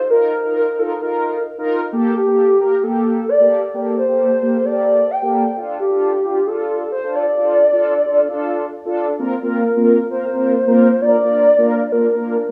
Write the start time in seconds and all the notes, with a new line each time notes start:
0.10 D#4 F4 A#4
0.45 D#4 F4 A#4
0.56 A#4
0.79 D#4 F4 A4 A#4
1.01 D#4 F4 A#4
1.58 D#4 F4 A#4
1.92 A#3 G4 A4
2.15 G4
2.26 A#3 G4 A4
2.60 A#3 G4 A#4
2.83 A#3 G4 A4
3.29 D5
3.40 A#3 G4 A4
3.74 A#3 G4 A4
3.97 C5
4.08 A#3 G4 A4
4.42 A#3 G4 A4
4.65 A#3 G4 A4 D5
5.11 G5
5.22 A#3 G4 A4
5.56 D4 F4 A4
5.79 G4
5.90 D4 F4 A4
6.24 D4 F4 G4
6.47 D4 F4 A4
6.92 C5
7.04 D4 F4 A4
7.15 D5
7.38 D4 F4 A4
7.72 D4 F4 A4
8.06 D4 F4 A4
8.29 D4 F4 A4
8.85 D4 F4 A4
9.19 A#3 C4 F4 A#4
9.42 A#3 C4 F4 A#4
9.76 A#3 C4 F4 A#4
10.10 A#3 C4 F4 A#4 C5
10.33 A#3 C4 F4 A#4
10.67 A#3 C4 F4 A#4
11.01 A#3 D4 F4 A#4 D5
11.24 A#3 D4 F4 A#4
11.58 A#3 D4 F4 A#4
11.92 A#3 D4 F4 A#4
12.15 A#3 D4 F4 A#4